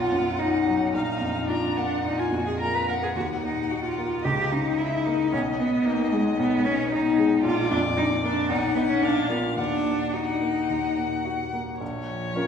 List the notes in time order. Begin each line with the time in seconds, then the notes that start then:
Already playing: B1 F4 F#5
0.12 F#2
0.39 D#4
0.67 F#3
0.93 A#1 D#4 F5
1.21 F2
1.48 D4 F4 A#5
1.77 A#3 F#5
2.04 A#1 D#4
2.19 F4 G#5
2.32 F2 F#4
2.47 G#4
2.60 F4 A#4 A#5
2.75 B4
2.88 A#3 A#4 F#5
3.03 G#4
3.15 D#2 F#4 F#5
3.43 A#2 D#4
3.71 F#4
3.84 F4
3.98 A#3
4.24 C#2 G4 D#5
4.51 C#3 D#4
4.78 D#4 E4
5.05 A#3 D#4
5.32 B1 C#4
5.58 B2 B3
5.85 A#3 D#4
6.12 G#3
6.38 B1 B3
6.65 B2 C#4
6.91 D#4
7.18 G#3
7.44 A#1 F4 D5
7.71 F2 D4
7.97 D4 D#4
8.23 A#3 D4
8.50 B1 D#4 F#5
8.76 B3 D#4 D#5
8.89 C#4
9.02 A#1 D4 F5
9.29 B3 F4 A#4
9.56 D#2 D4 F#5
9.85 A#2
10.12 D#4 F#4 F#5
10.41 A#3
10.70 D#2
10.97 A#2
11.25 F#4
11.53 A#3
11.81 A#1 F3 C#5
12.36 C#4 F4 A#4